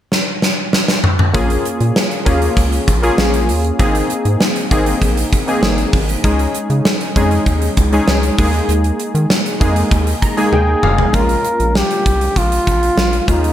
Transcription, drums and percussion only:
0.12 snare
0.42 snare
0.73 snare
0.88 snare
1.04 mid tom
1.19 mid tom
1.34 kick, closed hi-hat
1.50 closed hi-hat
1.65 closed hi-hat
1.80 closed hi-hat
1.96 snare
2.11 closed hi-hat
2.26 kick, closed hi-hat
2.42 closed hi-hat
2.57 kick, closed hi-hat
2.72 closed hi-hat
2.88 kick, closed hi-hat
3.03 closed hi-hat
3.18 snare
3.34 closed hi-hat
3.49 open hi-hat
3.64 closed hi-hat
3.79 kick, closed hi-hat
3.95 closed hi-hat
4.10 closed hi-hat
4.25 closed hi-hat
4.41 snare
4.56 closed hi-hat
4.71 kick, closed hi-hat
4.86 closed hi-hat
5.02 kick, closed hi-hat
5.17 closed hi-hat
5.32 kick, closed hi-hat
5.48 closed hi-hat
5.63 snare
5.78 closed hi-hat
5.93 kick, open hi-hat
6.09 closed hi-hat
6.24 kick, closed hi-hat
6.39 closed hi-hat
6.54 closed hi-hat
6.70 closed hi-hat
6.85 snare
7.01 closed hi-hat
7.16 kick, closed hi-hat
7.31 closed hi-hat
7.46 kick, closed hi-hat
7.62 closed hi-hat
7.77 kick, closed hi-hat
7.93 closed hi-hat
8.08 snare
8.23 closed hi-hat
8.38 kick, open hi-hat
8.54 closed hi-hat
8.69 closed hi-hat
8.84 closed hi-hat
9.00 closed hi-hat
9.15 closed hi-hat
9.30 snare
9.46 closed hi-hat
9.61 kick, closed hi-hat
9.76 closed hi-hat
9.91 kick, closed hi-hat
10.07 closed hi-hat
10.22 kick, closed hi-hat
10.37 closed hi-hat
10.53 high tom
10.83 mid tom
10.98 floor tom
11.14 kick, closed hi-hat
11.29 closed hi-hat
11.44 closed hi-hat
11.60 closed hi-hat
11.75 snare
11.91 closed hi-hat
12.06 kick, closed hi-hat
12.21 closed hi-hat
12.36 kick, closed hi-hat
12.52 closed hi-hat
12.67 kick, closed hi-hat
12.83 closed hi-hat
12.98 snare
13.13 closed hi-hat
13.28 kick, closed hi-hat
13.44 closed hi-hat

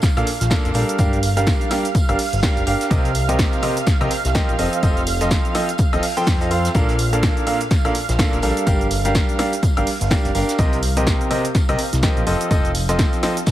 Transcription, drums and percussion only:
0.02 kick, snare, closed hi-hat, tambourine, shaker
0.17 closed hi-hat, high woodblock, shaker
0.27 open hi-hat, tambourine
0.41 snare, closed hi-hat, shaker
0.50 kick, snare, closed hi-hat, tambourine, shaker
0.65 closed hi-hat, shaker
0.74 open hi-hat, tambourine
0.89 closed hi-hat, shaker
0.98 kick, closed hi-hat, tambourine, shaker
1.13 closed hi-hat, shaker
1.23 open hi-hat, tambourine
1.37 snare, closed hi-hat, shaker
1.46 kick, snare, closed hi-hat, tambourine, shaker
1.61 closed hi-hat, shaker
1.71 snare, open hi-hat, tambourine, high woodblock
1.85 closed hi-hat, shaker
1.95 kick, closed hi-hat, tambourine, shaker
2.09 closed hi-hat, high woodblock, shaker
2.19 open hi-hat
2.33 closed hi-hat, shaker
2.43 kick, snare, closed hi-hat, tambourine, shaker
2.57 closed hi-hat, shaker
2.67 open hi-hat, tambourine
2.80 snare, closed hi-hat, shaker
2.91 kick, closed hi-hat, tambourine, shaker
3.05 closed hi-hat, shaker
3.14 open hi-hat, tambourine
3.29 closed hi-hat, shaker
3.39 kick, snare, closed hi-hat, tambourine, shaker
3.53 closed hi-hat, shaker
3.62 open hi-hat, tambourine, high woodblock
3.77 closed hi-hat, shaker
3.87 kick, snare, closed hi-hat, tambourine, shaker
4.01 closed hi-hat, high woodblock, shaker
4.11 open hi-hat, tambourine
4.25 snare, closed hi-hat, shaker
4.35 kick, snare, closed hi-hat, tambourine, shaker
4.49 closed hi-hat, shaker
4.59 open hi-hat, tambourine
4.73 closed hi-hat, shaker
4.83 kick, closed hi-hat, tambourine, shaker
4.97 closed hi-hat, shaker
5.07 open hi-hat, tambourine
5.21 snare, closed hi-hat, shaker
5.30 kick, snare, closed hi-hat, tambourine, shaker
5.45 closed hi-hat, shaker
5.54 snare, open hi-hat, tambourine, high woodblock
5.69 closed hi-hat, shaker
5.78 kick, closed hi-hat, tambourine, shaker
5.93 closed hi-hat, high woodblock, shaker
6.03 open hi-hat
6.17 closed hi-hat, shaker
6.27 kick, snare, closed hi-hat, tambourine, shaker
6.41 closed hi-hat, shaker
6.51 open hi-hat, tambourine
6.65 snare, closed hi-hat, shaker
6.75 kick, closed hi-hat, tambourine, shaker
6.89 closed hi-hat, shaker
6.98 open hi-hat, tambourine
7.13 closed hi-hat, shaker
7.23 kick, snare, closed hi-hat, tambourine, shaker
7.37 closed hi-hat, shaker
7.47 open hi-hat, tambourine, high woodblock
7.60 closed hi-hat, shaker
7.71 kick, snare, closed hi-hat, tambourine, shaker
7.85 closed hi-hat, high woodblock, shaker
7.95 open hi-hat, tambourine
8.09 snare, closed hi-hat, shaker
8.19 kick, snare, closed hi-hat, tambourine, shaker
8.33 closed hi-hat, shaker
8.42 open hi-hat, tambourine
8.57 closed hi-hat, shaker
8.67 kick, closed hi-hat, tambourine, shaker
8.81 closed hi-hat, shaker
8.91 open hi-hat, tambourine
9.05 snare, closed hi-hat, shaker
9.15 kick, snare, closed hi-hat, tambourine, shaker
9.29 closed hi-hat, shaker
9.39 snare, open hi-hat, tambourine, high woodblock
9.52 closed hi-hat, shaker
9.63 kick, closed hi-hat, tambourine, shaker
9.77 closed hi-hat, high woodblock, shaker
9.87 open hi-hat
10.01 closed hi-hat, shaker
10.11 kick, snare, closed hi-hat, tambourine, shaker
10.25 closed hi-hat, shaker
10.35 open hi-hat, tambourine
10.49 snare, closed hi-hat, shaker
10.58 kick, closed hi-hat, tambourine, shaker
10.73 closed hi-hat, shaker
10.82 open hi-hat, tambourine
10.97 closed hi-hat, shaker
11.06 kick, snare, closed hi-hat, tambourine, shaker
11.21 closed hi-hat, shaker
11.31 open hi-hat, tambourine, high woodblock
11.45 closed hi-hat, shaker
11.55 kick, snare, closed hi-hat, tambourine, shaker
11.69 closed hi-hat, high woodblock, shaker
11.78 open hi-hat, tambourine
11.93 snare, closed hi-hat, shaker
12.03 kick, snare, closed hi-hat, tambourine, shaker
12.17 closed hi-hat, shaker
12.27 open hi-hat, tambourine
12.41 closed hi-hat, shaker
12.51 kick, closed hi-hat, tambourine, shaker
12.65 closed hi-hat, shaker
12.75 open hi-hat, tambourine
12.89 snare, closed hi-hat, shaker
12.99 kick, snare, closed hi-hat, tambourine, shaker
13.13 closed hi-hat, shaker
13.23 snare, open hi-hat, tambourine, high woodblock
13.37 closed hi-hat, shaker
13.46 kick, snare, closed hi-hat, tambourine, shaker

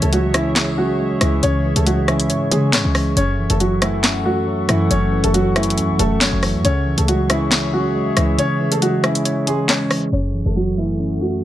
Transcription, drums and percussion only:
0.02 closed hi-hat
0.13 closed hi-hat
0.34 cross-stick, closed hi-hat
0.56 snare, clap, closed hi-hat
1.21 cross-stick, closed hi-hat
1.43 closed hi-hat
1.76 closed hi-hat
1.87 closed hi-hat
2.08 cross-stick, closed hi-hat
2.20 closed hi-hat
2.30 closed hi-hat
2.52 closed hi-hat
2.73 snare, clap
2.95 cross-stick, open hi-hat
3.17 closed hi-hat
3.50 closed hi-hat
3.60 closed hi-hat
3.82 cross-stick, closed hi-hat
4.04 snare, clap, closed hi-hat
4.69 cross-stick, closed hi-hat
4.91 closed hi-hat
5.24 closed hi-hat
5.34 closed hi-hat
5.56 cross-stick, closed hi-hat
5.63 closed hi-hat
5.70 closed hi-hat
5.78 closed hi-hat
5.99 closed hi-hat
6.21 snare, clap
6.43 cross-stick, open hi-hat
6.65 closed hi-hat
6.98 closed hi-hat
7.08 closed hi-hat
7.30 cross-stick, closed hi-hat
7.52 snare, clap, closed hi-hat
8.17 cross-stick, closed hi-hat
8.39 closed hi-hat
8.72 closed hi-hat
8.82 closed hi-hat
9.04 cross-stick, closed hi-hat
9.15 closed hi-hat
9.25 closed hi-hat
9.47 closed hi-hat
9.69 snare, clap
9.91 cross-stick, open hi-hat

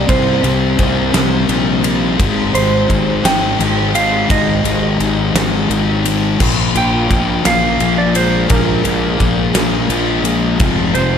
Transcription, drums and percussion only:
0.09 kick, ride
0.44 ride
0.79 kick, ride
1.14 snare, ride
1.49 ride
1.84 ride
2.20 kick, ride
2.55 ride
2.90 kick, ride
3.25 snare, ride
3.60 ride
3.95 ride
4.30 kick, ride
4.65 ride
5.00 ride
5.36 snare, ride
5.71 ride
6.05 ride
6.40 kick, crash
6.75 ride
7.11 kick, ride
7.45 snare, ride
7.80 ride
8.15 ride
8.50 kick, ride
8.85 ride
9.20 kick, ride
9.55 snare, ride
9.90 ride
10.25 ride
10.60 kick, ride
10.95 ride

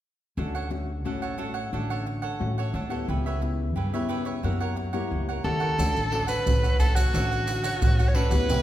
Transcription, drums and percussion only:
5.79 pandeiro, maracas, surdo
5.96 pandeiro, maracas
6.12 pandeiro
6.28 pandeiro, maracas
6.47 pandeiro, maracas, surdo
6.64 pandeiro, maracas
6.80 pandeiro, maracas, surdo
6.96 pandeiro, maracas
7.15 pandeiro, maracas, surdo
7.32 pandeiro, maracas
7.48 pandeiro, maracas
7.64 pandeiro, maracas
7.82 pandeiro, maracas, surdo
7.99 pandeiro, maracas
8.15 pandeiro
8.31 pandeiro, maracas
8.49 pandeiro, maracas, surdo

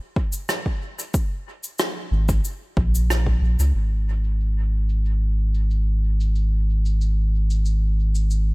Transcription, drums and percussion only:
0.16 kick
0.32 cabasa
0.49 cross-stick, cabasa
0.66 kick
0.99 cabasa
1.14 kick, cabasa
1.63 cabasa
1.79 cross-stick, cabasa
2.29 kick, cabasa
2.45 cabasa
2.77 kick
2.95 cabasa
3.10 cross-stick, cabasa
3.26 kick
3.59 cabasa
3.75 cabasa
4.24 cabasa
4.40 cabasa
4.89 cabasa
5.05 cabasa
5.54 cabasa
5.70 cabasa
6.20 cabasa
6.35 cabasa
6.85 cabasa
7.01 cabasa
7.50 cabasa
7.65 cabasa
8.15 cabasa
8.31 cabasa

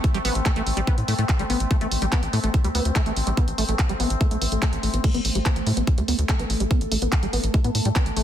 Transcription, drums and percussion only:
0.04 kick, closed hi-hat
0.14 closed hi-hat
0.25 open hi-hat
0.35 closed hi-hat
0.46 kick, clap, closed hi-hat
0.56 closed hi-hat
0.67 open hi-hat
0.77 closed hi-hat
0.87 kick, closed hi-hat
0.98 closed hi-hat
1.08 open hi-hat
1.19 closed hi-hat
1.29 kick, clap, closed hi-hat
1.39 closed hi-hat
1.50 open hi-hat
1.60 closed hi-hat
1.71 kick, closed hi-hat
1.81 closed hi-hat
1.92 open hi-hat
2.02 closed hi-hat
2.12 kick, clap, closed hi-hat
2.23 closed hi-hat
2.33 open hi-hat
2.44 closed hi-hat
2.54 kick, closed hi-hat
2.64 closed hi-hat
2.75 open hi-hat
2.85 closed hi-hat
2.96 kick, clap, closed hi-hat
3.06 closed hi-hat
3.17 open hi-hat
3.27 closed hi-hat
3.37 kick, closed hi-hat
3.48 closed hi-hat
3.58 open hi-hat
3.69 closed hi-hat
3.79 kick, clap, closed hi-hat
3.89 closed hi-hat
4.00 open hi-hat
4.10 closed hi-hat
4.21 kick, closed hi-hat
4.31 closed hi-hat
4.42 open hi-hat
4.52 closed hi-hat
4.62 kick, clap, closed hi-hat
4.73 closed hi-hat
4.83 open hi-hat
4.94 closed hi-hat
5.04 kick, closed hi-hat, crash
5.14 closed hi-hat
5.25 open hi-hat
5.35 closed hi-hat
5.46 kick, clap, closed hi-hat
5.56 closed hi-hat
5.67 open hi-hat
5.77 closed hi-hat
5.87 kick, closed hi-hat
5.98 closed hi-hat
6.08 open hi-hat
6.19 closed hi-hat
6.29 kick, clap, closed hi-hat
6.39 closed hi-hat
6.50 open hi-hat
6.60 closed hi-hat
6.71 kick, closed hi-hat
6.81 closed hi-hat
6.92 open hi-hat
7.02 closed hi-hat
7.12 kick, clap, closed hi-hat
7.23 closed hi-hat
7.33 open hi-hat
7.44 closed hi-hat
7.54 kick, closed hi-hat
7.64 closed hi-hat
7.75 open hi-hat
7.85 closed hi-hat
7.96 kick, clap, closed hi-hat
8.06 closed hi-hat
8.17 open hi-hat

